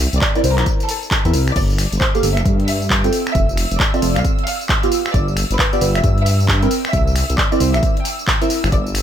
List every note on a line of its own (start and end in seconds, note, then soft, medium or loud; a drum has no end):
0.00 0.32 C4 loud
0.00 0.32 E4 medium
0.00 0.32 A#4 medium
0.00 0.32 G5 loud
0.13 0.19 C2 medium
0.13 closed hi-hat medium
0.13 tambourine soft
0.21 0.39 D5 medium
0.21 kick loud
0.21 clap loud
0.21 tambourine soft
0.35 0.43 C4 medium
0.35 0.43 E4 medium
0.35 0.43 A#4 medium
0.35 0.43 D5 loud
0.35 closed hi-hat soft
0.35 tambourine soft
0.35 high bongo medium
0.44 0.59 C2 medium
0.44 1.22 C4 medium
0.44 1.22 E4 medium
0.44 1.22 A#4 medium
0.44 1.22 C5 medium
0.44 open hi-hat loud
0.44 tambourine medium
0.58 0.64 A#1 loud
0.58 0.72 A#4 loud
0.58 finger snap medium
0.58 clap medium
0.58 closed hi-hat medium
0.58 tambourine soft
0.66 kick loud
0.66 closed hi-hat medium
0.66 tambourine soft
0.80 closed hi-hat soft
0.80 tambourine soft
0.89 1.06 A4 medium
0.89 open hi-hat loud
0.89 tambourine medium
1.03 tambourine soft
1.11 kick loud
1.11 clap loud
1.11 tambourine soft
1.25 1.35 E2 loud
1.25 1.43 C4 medium
1.25 1.43 E4 medium
1.25 1.43 A#4 medium
1.25 1.43 E5 loud
1.25 closed hi-hat medium
1.25 tambourine soft
1.33 1.52 C2 medium
1.33 open hi-hat loud
1.33 tambourine medium
1.48 finger snap medium
1.48 tambourine soft
1.56 1.87 G1 loud
1.56 1.77 D5 loud
1.56 8.71 E6 medium
1.56 kick loud
1.56 closed hi-hat medium
1.56 crash medium
1.56 tambourine soft
1.70 tambourine soft
1.78 finger snap soft
1.78 open hi-hat loud
1.78 tambourine medium
1.92 1.98 G1 medium
1.92 closed hi-hat medium
1.92 tambourine soft
2.01 2.18 C5 medium
2.01 kick loud
2.01 clap loud
2.01 tambourine soft
2.15 2.22 A#3 loud
2.15 2.22 G4 medium
2.15 2.22 A4 medium
2.15 2.22 F5 loud
2.15 closed hi-hat soft
2.15 tambourine soft
2.23 2.38 G1 medium
2.23 3.01 A#3 medium
2.23 3.01 G4 medium
2.23 3.01 A4 medium
2.23 3.01 E5 medium
2.23 open hi-hat loud
2.23 tambourine medium
2.37 2.43 F1 loud
2.37 2.51 E5 medium
2.37 finger snap medium
2.37 closed hi-hat medium
2.37 tambourine soft
2.45 3.09 G2 medium
2.45 kick loud
2.45 closed hi-hat medium
2.45 tambourine soft
2.60 closed hi-hat soft
2.68 2.85 E5 medium
2.68 open hi-hat loud
2.68 tambourine medium
2.82 tambourine soft
2.90 kick loud
2.90 clap loud
2.90 tambourine soft
3.04 3.90 C4 medium
3.04 3.90 F4 medium
3.04 3.90 A4 medium
3.04 3.90 G5 loud
3.04 closed hi-hat medium
3.04 tambourine soft
3.13 open hi-hat medium
3.13 tambourine medium
3.27 finger snap medium
3.27 tambourine soft
3.35 3.66 F1 loud
3.35 3.56 E5 medium
3.35 kick loud
3.35 closed hi-hat medium
3.35 tambourine soft
3.49 tambourine soft
3.57 finger snap soft
3.57 open hi-hat loud
3.57 tambourine medium
3.71 3.78 F1 medium
3.71 closed hi-hat medium
3.71 tambourine soft
3.79 3.97 D5 medium
3.79 kick loud
3.79 clap loud
3.79 tambourine soft
3.94 4.01 C4 loud
3.94 4.01 F4 medium
3.94 4.01 A4 medium
3.94 4.01 E5 loud
3.94 closed hi-hat soft
3.94 tambourine soft
3.94 high bongo medium
4.02 4.18 F1 medium
4.02 4.80 C4 medium
4.02 4.80 F4 medium
4.02 4.80 A4 medium
4.02 4.80 D5 medium
4.02 open hi-hat loud
4.02 tambourine medium
4.16 4.22 C2 loud
4.16 4.30 F5 medium
4.16 finger snap medium
4.16 closed hi-hat medium
4.16 tambourine soft
4.25 kick loud
4.25 closed hi-hat medium
4.25 tambourine soft
4.39 closed hi-hat soft
4.47 4.64 F5 loud
4.47 open hi-hat loud
4.47 tambourine medium
4.61 tambourine soft
4.69 kick loud
4.69 clap loud
4.69 tambourine soft
4.83 5.70 B3 medium
4.83 5.70 F4 medium
4.83 5.70 G4 medium
4.83 5.70 F5 loud
4.83 closed hi-hat soft
4.83 tambourine soft
4.92 open hi-hat medium
4.92 tambourine medium
5.06 finger snap medium
5.06 tambourine soft
5.14 5.45 G1 medium
5.14 5.35 D5 loud
5.14 kick loud
5.14 closed hi-hat medium
5.14 tambourine soft
5.28 tambourine soft
5.37 finger snap soft
5.37 open hi-hat loud
5.37 tambourine medium
5.51 5.57 G1 medium
5.51 closed hi-hat medium
5.51 tambourine soft
5.59 5.76 B4 medium
5.59 kick loud
5.59 clap loud
5.59 tambourine soft
5.73 5.80 B3 medium
5.73 5.80 F4 medium
5.73 5.80 G4 medium
5.73 5.80 D5 loud
5.73 closed hi-hat soft
5.73 tambourine soft
5.81 5.97 G1 medium
5.81 6.59 B3 medium
5.81 6.59 F4 medium
5.81 6.59 G4 medium
5.81 6.59 B4 medium
5.81 open hi-hat loud
5.81 tambourine medium
5.95 6.02 F1 loud
5.95 6.09 E5 loud
5.95 finger snap medium
5.95 closed hi-hat medium
5.95 tambourine soft
6.04 6.67 G2 medium
6.04 kick loud
6.04 closed hi-hat medium
6.04 tambourine soft
6.18 closed hi-hat soft
6.26 6.43 E5 loud
6.26 open hi-hat loud
6.26 tambourine medium
6.40 tambourine soft
6.48 kick loud
6.48 clap loud
6.48 tambourine soft
6.62 7.49 C4 loud
6.62 7.49 E4 medium
6.62 7.49 A#4 medium
6.62 7.49 G5 loud
6.62 closed hi-hat soft
6.62 tambourine soft
6.71 open hi-hat medium
6.71 tambourine medium
6.85 finger snap medium
6.85 tambourine soft
6.93 7.24 C2 loud
6.93 7.14 E5 loud
6.93 kick loud
6.93 closed hi-hat medium
6.93 tambourine soft
7.07 tambourine soft
7.16 finger snap soft
7.16 open hi-hat loud
7.16 tambourine medium
7.30 7.36 C2 medium
7.30 closed hi-hat medium
7.30 tambourine soft
7.38 7.55 D5 medium
7.38 kick loud
7.38 clap loud
7.38 tambourine soft
7.52 7.59 C4 loud
7.52 7.59 E4 medium
7.52 7.59 A#4 medium
7.52 7.59 D5 loud
7.52 closed hi-hat soft
7.52 tambourine soft
7.52 high bongo medium
7.60 7.76 C2 medium
7.60 8.38 C4 medium
7.60 8.38 E4 medium
7.60 8.38 A#4 medium
7.60 8.38 C5 medium
7.60 open hi-hat loud
7.60 tambourine medium
7.74 7.81 A#1 loud
7.74 7.88 E5 loud
7.74 finger snap medium
7.74 closed hi-hat medium
7.74 tambourine soft
7.83 kick loud
7.83 closed hi-hat medium
7.83 tambourine soft
7.97 closed hi-hat soft
8.05 8.22 G5 medium
8.05 open hi-hat loud
8.05 tambourine medium
8.19 tambourine soft
8.27 kick loud
8.27 clap loud
8.27 tambourine soft
8.41 8.59 C4 medium
8.41 8.59 E4 medium
8.41 8.59 A#4 medium
8.41 8.59 E5 loud
8.41 closed hi-hat soft
8.41 tambourine soft
8.50 open hi-hat medium
8.50 tambourine medium
8.64 8.70 G1 medium
8.64 finger snap medium
8.64 tambourine soft
8.72 9.02 G1 medium
8.72 8.93 D5 medium
8.72 9.02 E6 medium
8.72 kick loud
8.72 closed hi-hat medium
8.72 tambourine soft
8.86 tambourine soft
8.95 finger snap soft
8.95 open hi-hat loud
8.95 tambourine medium